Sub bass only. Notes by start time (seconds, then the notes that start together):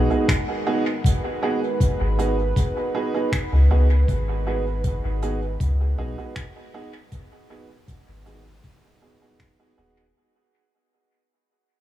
2.00 G#1
3.52 C#2
4.08 G#1
5.04 G#1
5.60 C#2
5.98 B1
8.08 G#1
9.78 D#1